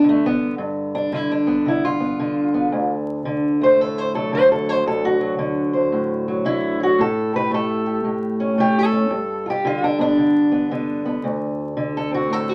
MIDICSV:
0, 0, Header, 1, 2, 480
1, 0, Start_track
1, 0, Tempo, 532860
1, 527, Time_signature, 4, 2, 24, 8
1, 11301, End_track
2, 0, Start_track
2, 0, Title_t, "Steel-string acoustic guitar"
2, 0, Program_c, 0, 25
2, 0, Note_on_c, 0, 43, 70
2, 0, Note_on_c, 0, 59, 52
2, 36, Note_on_c, 0, 50, 63
2, 81, Note_on_c, 0, 57, 90
2, 210, Note_off_c, 0, 59, 0
2, 223, Note_off_c, 0, 57, 0
2, 235, Note_on_c, 0, 59, 98
2, 482, Note_off_c, 0, 59, 0
2, 495, Note_off_c, 0, 43, 0
2, 524, Note_on_c, 0, 43, 69
2, 854, Note_on_c, 0, 62, 97
2, 1003, Note_off_c, 0, 50, 0
2, 1011, Note_off_c, 0, 62, 0
2, 1013, Note_on_c, 0, 50, 74
2, 1029, Note_on_c, 0, 64, 94
2, 1179, Note_off_c, 0, 64, 0
2, 1185, Note_on_c, 0, 62, 80
2, 1323, Note_on_c, 0, 59, 50
2, 1483, Note_off_c, 0, 50, 0
2, 1494, Note_on_c, 0, 50, 56
2, 1497, Note_off_c, 0, 62, 0
2, 1515, Note_on_c, 0, 64, 79
2, 1662, Note_off_c, 0, 64, 0
2, 1664, Note_on_c, 0, 65, 101
2, 1791, Note_off_c, 0, 59, 0
2, 1802, Note_on_c, 0, 59, 49
2, 1967, Note_off_c, 0, 50, 0
2, 1977, Note_on_c, 0, 50, 64
2, 1987, Note_on_c, 0, 62, 47
2, 2278, Note_off_c, 0, 59, 0
2, 2289, Note_on_c, 0, 59, 48
2, 2428, Note_off_c, 0, 43, 0
2, 2437, Note_off_c, 0, 59, 0
2, 2453, Note_on_c, 0, 38, 76
2, 2619, Note_off_c, 0, 65, 0
2, 2927, Note_off_c, 0, 50, 0
2, 2930, Note_on_c, 0, 50, 68
2, 3250, Note_off_c, 0, 62, 0
2, 3254, Note_on_c, 0, 57, 48
2, 3274, Note_on_c, 0, 72, 89
2, 3429, Note_on_c, 0, 45, 55
2, 3433, Note_off_c, 0, 72, 0
2, 3433, Note_on_c, 0, 69, 81
2, 3585, Note_off_c, 0, 69, 0
2, 3585, Note_on_c, 0, 72, 104
2, 3733, Note_on_c, 0, 54, 46
2, 3736, Note_off_c, 0, 72, 0
2, 3740, Note_on_c, 0, 69, 106
2, 3887, Note_off_c, 0, 50, 0
2, 3896, Note_off_c, 0, 69, 0
2, 3898, Note_on_c, 0, 50, 66
2, 3901, Note_off_c, 0, 45, 0
2, 3915, Note_on_c, 0, 72, 103
2, 4064, Note_off_c, 0, 72, 0
2, 4069, Note_on_c, 0, 69, 86
2, 4225, Note_off_c, 0, 69, 0
2, 4225, Note_on_c, 0, 72, 89
2, 4369, Note_off_c, 0, 38, 0
2, 4379, Note_off_c, 0, 72, 0
2, 4380, Note_on_c, 0, 38, 79
2, 4391, Note_on_c, 0, 69, 93
2, 4542, Note_off_c, 0, 69, 0
2, 4545, Note_off_c, 0, 57, 0
2, 4549, Note_on_c, 0, 66, 92
2, 4677, Note_off_c, 0, 54, 0
2, 4688, Note_on_c, 0, 54, 44
2, 4803, Note_off_c, 0, 66, 0
2, 4840, Note_off_c, 0, 50, 0
2, 4851, Note_on_c, 0, 50, 67
2, 5165, Note_on_c, 0, 72, 51
2, 5335, Note_on_c, 0, 45, 55
2, 5643, Note_off_c, 0, 54, 0
2, 5656, Note_on_c, 0, 54, 46
2, 5798, Note_off_c, 0, 50, 0
2, 5809, Note_on_c, 0, 50, 60
2, 5814, Note_off_c, 0, 45, 0
2, 5816, Note_on_c, 0, 64, 109
2, 6113, Note_off_c, 0, 54, 0
2, 6124, Note_on_c, 0, 54, 50
2, 6135, Note_off_c, 0, 64, 0
2, 6155, Note_on_c, 0, 66, 87
2, 6277, Note_off_c, 0, 72, 0
2, 6291, Note_off_c, 0, 50, 0
2, 6291, Note_on_c, 0, 45, 68
2, 6297, Note_off_c, 0, 38, 0
2, 6297, Note_off_c, 0, 54, 0
2, 6305, Note_off_c, 0, 66, 0
2, 6312, Note_on_c, 0, 69, 95
2, 6601, Note_on_c, 0, 67, 45
2, 6623, Note_off_c, 0, 69, 0
2, 6628, Note_on_c, 0, 71, 102
2, 6765, Note_on_c, 0, 57, 75
2, 6781, Note_off_c, 0, 71, 0
2, 6795, Note_on_c, 0, 69, 102
2, 7077, Note_off_c, 0, 67, 0
2, 7081, Note_on_c, 0, 67, 48
2, 7237, Note_off_c, 0, 45, 0
2, 7248, Note_on_c, 0, 45, 52
2, 7264, Note_off_c, 0, 69, 0
2, 7566, Note_on_c, 0, 61, 52
2, 7717, Note_off_c, 0, 57, 0
2, 7728, Note_on_c, 0, 57, 59
2, 7735, Note_off_c, 0, 67, 0
2, 7748, Note_on_c, 0, 67, 108
2, 7901, Note_off_c, 0, 67, 0
2, 7912, Note_on_c, 0, 69, 87
2, 8028, Note_off_c, 0, 61, 0
2, 8038, Note_on_c, 0, 61, 51
2, 8189, Note_off_c, 0, 57, 0
2, 8193, Note_off_c, 0, 61, 0
2, 8201, Note_on_c, 0, 43, 67
2, 8210, Note_off_c, 0, 45, 0
2, 8520, Note_on_c, 0, 65, 49
2, 8542, Note_off_c, 0, 69, 0
2, 8558, Note_on_c, 0, 67, 100
2, 8691, Note_on_c, 0, 50, 75
2, 8694, Note_off_c, 0, 65, 0
2, 8705, Note_off_c, 0, 67, 0
2, 8707, Note_on_c, 0, 65, 104
2, 8859, Note_off_c, 0, 65, 0
2, 8861, Note_on_c, 0, 62, 78
2, 8998, Note_on_c, 0, 59, 52
2, 9007, Note_off_c, 0, 62, 0
2, 9018, Note_on_c, 0, 62, 99
2, 9156, Note_off_c, 0, 50, 0
2, 9167, Note_on_c, 0, 50, 50
2, 9462, Note_off_c, 0, 59, 0
2, 9473, Note_on_c, 0, 59, 48
2, 9638, Note_off_c, 0, 50, 0
2, 9642, Note_off_c, 0, 59, 0
2, 9649, Note_on_c, 0, 50, 64
2, 9653, Note_on_c, 0, 59, 53
2, 9947, Note_off_c, 0, 59, 0
2, 9958, Note_on_c, 0, 59, 52
2, 9973, Note_off_c, 0, 62, 0
2, 10102, Note_off_c, 0, 43, 0
2, 10111, Note_off_c, 0, 59, 0
2, 10124, Note_on_c, 0, 38, 77
2, 10596, Note_off_c, 0, 50, 0
2, 10600, Note_on_c, 0, 50, 70
2, 10783, Note_on_c, 0, 69, 105
2, 10912, Note_on_c, 0, 60, 54
2, 10935, Note_off_c, 0, 69, 0
2, 10940, Note_on_c, 0, 66, 97
2, 11079, Note_on_c, 0, 45, 58
2, 11103, Note_off_c, 0, 66, 0
2, 11103, Note_on_c, 0, 69, 84
2, 11252, Note_off_c, 0, 69, 0
2, 11252, Note_on_c, 0, 66, 95
2, 11301, Note_off_c, 0, 38, 0
2, 11301, Note_off_c, 0, 45, 0
2, 11301, Note_off_c, 0, 50, 0
2, 11301, Note_off_c, 0, 60, 0
2, 11301, Note_off_c, 0, 66, 0
2, 11301, End_track
0, 0, End_of_file